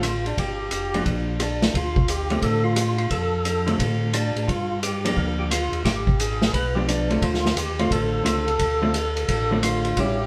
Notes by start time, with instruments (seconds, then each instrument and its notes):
Already playing: tonewheel organ A1 F4
0.03 cross-stick, hi-hat pedal, ride
0.26 tonewheel organ D4, ride
0.37 tonewheel organ G1 G4, kick, ride
0.70 tonewheel organ F1, hi-hat pedal, ride
0.94 hollow-body jazz guitar F3 A#3 D4, ride
1.05 tonewheel organ A#1, kick, ride
1.40 tonewheel organ D4, cross-stick, hi-hat pedal, ride
1.62 snare, ride
1.74 tonewheel organ D2 F4, kick, ride
1.96 kick
2.08 tonewheel organ G4, hi-hat pedal, ride
2.30 hollow-body jazz guitar D3 A3 C4 F4, ride
2.42 tonewheel organ A2 A4, kick, ride
2.64 tonewheel organ F4
2.76 cross-stick, hi-hat pedal, ride
2.98 tonewheel organ F4, ride
3.10 tonewheel organ F2 A4, kick, ride
3.45 hi-hat pedal, ride
3.66 hollow-body jazz guitar D3 A3 C4 F4, ride
3.79 tonewheel organ A2, kick, ride
4.13 tonewheel organ D4, cross-stick, hi-hat pedal, ride
4.36 tonewheel organ A2, ride
4.47 tonewheel organ G2 F4, kick, ride
4.83 tonewheel organ G4, hi-hat pedal, ride
5.05 hollow-body jazz guitar F3 A#3 D4, ride
5.16 tonewheel organ D2 A#4, kick
5.39 tonewheel organ G4
5.51 tonewheel organ F4, cross-stick, hi-hat pedal, ride
5.72 tonewheel organ D#2, ride
5.84 tonewheel organ G#1 G4, kick, snare, ride
6.07 kick
6.20 tonewheel organ G#4, hi-hat pedal, ride
6.42 snare
6.53 tonewheel organ B1 B4, kick, ride
6.75 hollow-body jazz guitar F3 B3 D4, tonewheel organ G4
6.89 tonewheel organ D4, cross-stick, hi-hat pedal, ride
7.10 hollow-body jazz guitar D3 A3 C4 F4, ride
7.22 tonewheel organ D2 F4, kick, ride
7.34 snare
7.46 snare
7.56 tonewheel organ D#2 G4, hi-hat pedal, ride
7.79 hollow-body jazz guitar D3 A3 C4 F4, tonewheel organ F4, ride
7.91 tonewheel organ A1 A4, kick, ride
8.24 tonewheel organ C#2, hollow-body jazz guitar D3 A3 C4 F4, cross-stick, hi-hat pedal, ride
8.48 ride
8.59 tonewheel organ D2, kick, ride
8.82 hollow-body jazz guitar D3 A3 C4 F4
8.94 hi-hat pedal, ride
9.17 ride
9.28 tonewheel organ A1, kick, ride
9.51 hollow-body jazz guitar D3 A3 C4 F4
9.63 tonewheel organ F4, cross-stick, hi-hat pedal, ride
9.85 ride
9.97 tonewheel organ A1 G4, hollow-body jazz guitar G3 C#4 E4, kick, ride